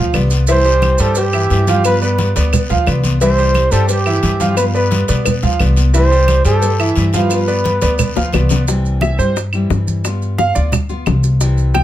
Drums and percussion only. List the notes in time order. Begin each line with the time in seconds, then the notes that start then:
0.14 cowbell, high conga, short guiro, claves, maracas
0.30 short guiro, maracas
0.47 cowbell, high conga, long guiro, maracas
0.65 high conga, maracas
0.82 cowbell, high conga, short guiro, claves, maracas
0.98 high conga, short guiro, maracas
1.15 cowbell, high conga, long guiro, maracas
1.33 high conga, claves, maracas
1.50 cowbell, high conga, short guiro, maracas
1.67 cowbell, high conga, short guiro, maracas
1.84 cowbell, long guiro, claves, maracas
2.02 high conga, maracas
2.18 cowbell, high conga, short guiro, maracas
2.36 cowbell, high conga, short guiro, maracas
2.52 cowbell, high conga, low conga, long guiro, claves, maracas
2.70 cowbell, high conga, low conga, maracas
2.87 cowbell, high conga, short guiro, claves, maracas
3.04 high conga, short guiro, maracas
3.20 cowbell, long guiro, maracas
3.38 maracas
3.54 cowbell, high conga, short guiro, claves, maracas
3.72 high conga, short guiro, maracas
3.89 cowbell, high conga, long guiro, maracas
4.06 high conga, claves, maracas
4.23 cowbell, high conga, short guiro, maracas
4.40 cowbell, high conga, short guiro, maracas
4.57 cowbell, high conga, long guiro, claves, maracas
4.75 high conga, maracas
4.91 cowbell, high conga, short guiro, maracas
5.08 cowbell, high conga, short guiro, maracas
5.25 cowbell, high conga, low conga, long guiro, claves, maracas
5.43 cowbell, high conga, low conga, maracas
5.60 cowbell, high conga, short guiro, claves, maracas
5.77 short guiro, maracas
5.94 cowbell, high conga, long guiro, maracas
6.11 high conga, maracas
6.28 cowbell, high conga, short guiro, claves, maracas
6.45 high conga, short guiro, maracas
6.62 cowbell, high conga, long guiro, maracas
6.80 high conga, claves, maracas
6.95 cowbell, high conga, short guiro, maracas
7.13 cowbell, high conga, short guiro, maracas
7.30 cowbell, high conga, long guiro, claves, maracas
7.48 high conga, maracas
7.64 cowbell, high conga, short guiro, maracas
7.81 cowbell, high conga, short guiro, maracas
7.98 cowbell, high conga, low conga, long guiro, claves, maracas
8.16 cowbell, high bongo, high conga, maracas
8.33 cowbell, high bongo, high conga, short guiro, claves, maracas
8.49 low bongo, high conga, short guiro, maracas
8.68 high bongo, maracas
8.84 high conga, maracas
9.01 high bongo, high conga, claves, maracas
9.18 high conga, maracas
9.36 high bongo, high conga, maracas
9.53 high conga, claves, maracas
9.70 high bongo, low bongo, high conga, maracas
9.88 high conga, maracas
10.04 high bongo, high conga, claves, maracas
10.22 high conga, maracas
10.39 high bongo, high conga, maracas
10.55 high bongo, high conga, maracas
10.72 high bongo, high conga, low conga, claves, maracas
10.89 high bongo, high conga, maracas
11.06 high bongo, low bongo, high conga, claves, maracas
11.23 high bongo, maracas
11.41 high bongo, maracas
11.57 high conga, maracas
11.74 high bongo, high conga, claves, maracas